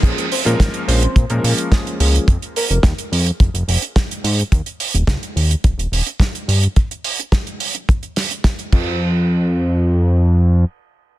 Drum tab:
CC |x---------------|----------------|----------------|--------------x-|
HH |xxoxxxoxxxoxxxox|xxoxxxoxxxoxxxox|xxoxxxoxxxoxxxox|xxoxxxoxxxoxxx--|
SD |----o-------o---|----o-------o---|----o-------o---|----o-----o-o---|
BD |o---o---o---o---|o---o---o---o---|o---o---o---o---|o---o---o---o-o-|

CC |----------------|
HH |----------------|
SD |----------------|
BD |----------------|